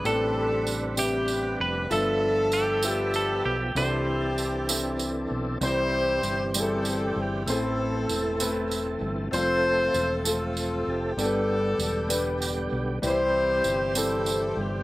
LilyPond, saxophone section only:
\new Staff \with { instrumentName = "Saxophone section" } { \time 6/8 \key c \major \tempo 4. = 65 << { a'4 r8 g'4 b'8 | a'4. g'4. | g'2~ g'8 r8 | c''4. a'4 g'8 |
a'2 r4 | c''4. a'4 g'8 | a'2 r4 | c''4. a'4 g'8 | } \\ { <c' d'>4. <b c'>4. | <d' f'>4. <b d'>4. | <d' e'>2~ <d' e'>8 r8 | <e' g'>4. <c' e'>4. |
<c' e'>2 r4 | <f' a'>4. <c' f'>4. | d'2 r4 | <e' g'>4. <c' e'>4. | } >> }